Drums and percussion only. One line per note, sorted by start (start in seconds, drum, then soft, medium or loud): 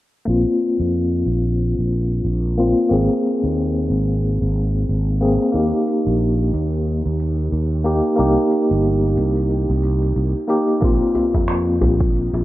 0.28 shaker soft
0.61 shaker medium
0.80 shaker soft
0.94 shaker soft
1.27 shaker medium
1.46 shaker soft
1.60 shaker soft
1.93 shaker medium
2.13 shaker soft
2.26 shaker soft
2.59 shaker medium
2.78 shaker soft
2.92 shaker soft
3.25 shaker medium
3.44 shaker soft
3.58 shaker soft
3.90 shaker medium
4.10 shaker soft
4.23 shaker soft
4.56 shaker medium
4.75 shaker soft
4.89 shaker soft
5.22 shaker medium
5.41 shaker soft
5.55 shaker soft
5.88 shaker medium
6.07 shaker soft
6.21 shaker soft
6.54 shaker medium
6.73 shaker soft
6.87 shaker soft
7.20 shaker medium
7.39 shaker soft
7.52 shaker soft
7.85 shaker medium
8.05 shaker soft
8.18 shaker soft
8.51 shaker medium
8.71 shaker soft
8.84 shaker soft
9.17 shaker medium
9.37 shaker soft
9.50 shaker soft
9.83 shaker medium
10.02 shaker soft
10.16 shaker soft
10.49 shaker medium
10.68 shaker soft
10.82 kick loud
10.82 shaker soft
11.15 djembe tone medium
11.15 shaker medium
11.34 kick medium
11.34 djembe slap medium
11.34 shaker soft
11.48 finger snap medium
11.48 shaker soft
11.81 djembe bass medium
11.81 shaker medium
12.00 kick loud
12.00 shaker soft
12.15 shaker soft
12.34 djembe slap medium